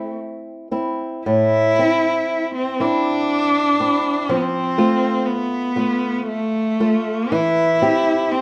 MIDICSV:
0, 0, Header, 1, 3, 480
1, 0, Start_track
1, 0, Key_signature, 0, "minor"
1, 0, Tempo, 1109057
1, 546, Time_signature, 3, 2, 24, 8
1, 546, Tempo, 1029160
1, 1026, Tempo, 990099
1, 2466, Tempo, 1016949
1, 3955, End_track
2, 0, Start_track
2, 0, Title_t, "Cello"
2, 0, Program_c, 0, 42
2, 0, Note_on_c, 0, 57, 37
2, 65, Note_off_c, 0, 57, 0
2, 548, Note_on_c, 0, 64, 65
2, 1131, Note_off_c, 0, 64, 0
2, 1151, Note_on_c, 0, 60, 56
2, 1276, Note_on_c, 0, 62, 67
2, 1283, Note_off_c, 0, 60, 0
2, 2000, Note_on_c, 0, 60, 56
2, 2008, Note_off_c, 0, 62, 0
2, 2032, Note_on_c, 0, 59, 49
2, 2039, Note_off_c, 0, 60, 0
2, 2057, Note_on_c, 0, 60, 64
2, 2065, Note_off_c, 0, 59, 0
2, 2465, Note_on_c, 0, 59, 60
2, 2472, Note_off_c, 0, 60, 0
2, 2939, Note_off_c, 0, 59, 0
2, 2943, Note_on_c, 0, 57, 65
2, 3437, Note_on_c, 0, 64, 67
2, 3444, Note_off_c, 0, 57, 0
2, 3906, Note_on_c, 0, 60, 62
2, 3913, Note_off_c, 0, 64, 0
2, 3955, Note_off_c, 0, 60, 0
2, 3955, End_track
3, 0, Start_track
3, 0, Title_t, "Nylon-string guitar"
3, 0, Program_c, 1, 24
3, 0, Note_on_c, 1, 60, 26
3, 0, Note_on_c, 1, 64, 29
3, 290, Note_off_c, 1, 60, 0
3, 291, Note_off_c, 1, 64, 0
3, 309, Note_on_c, 1, 60, 27
3, 311, Note_on_c, 1, 64, 30
3, 529, Note_off_c, 1, 60, 0
3, 530, Note_off_c, 1, 64, 0
3, 546, Note_on_c, 1, 45, 44
3, 781, Note_off_c, 1, 45, 0
3, 793, Note_on_c, 1, 60, 38
3, 796, Note_on_c, 1, 64, 40
3, 1256, Note_off_c, 1, 60, 0
3, 1257, Note_off_c, 1, 64, 0
3, 1273, Note_on_c, 1, 60, 34
3, 1276, Note_on_c, 1, 64, 38
3, 1739, Note_off_c, 1, 60, 0
3, 1741, Note_off_c, 1, 64, 0
3, 1757, Note_on_c, 1, 60, 39
3, 1761, Note_on_c, 1, 64, 41
3, 1977, Note_off_c, 1, 60, 0
3, 1978, Note_off_c, 1, 64, 0
3, 1997, Note_on_c, 1, 53, 53
3, 2224, Note_off_c, 1, 53, 0
3, 2232, Note_on_c, 1, 57, 42
3, 2234, Note_on_c, 1, 65, 45
3, 2682, Note_off_c, 1, 57, 0
3, 2683, Note_off_c, 1, 65, 0
3, 2702, Note_on_c, 1, 57, 39
3, 2705, Note_on_c, 1, 65, 43
3, 3170, Note_off_c, 1, 57, 0
3, 3172, Note_off_c, 1, 65, 0
3, 3193, Note_on_c, 1, 57, 45
3, 3196, Note_on_c, 1, 65, 46
3, 3420, Note_off_c, 1, 57, 0
3, 3422, Note_off_c, 1, 65, 0
3, 3437, Note_on_c, 1, 52, 55
3, 3667, Note_off_c, 1, 52, 0
3, 3673, Note_on_c, 1, 60, 40
3, 3677, Note_on_c, 1, 67, 48
3, 3955, Note_off_c, 1, 60, 0
3, 3955, Note_off_c, 1, 67, 0
3, 3955, End_track
0, 0, End_of_file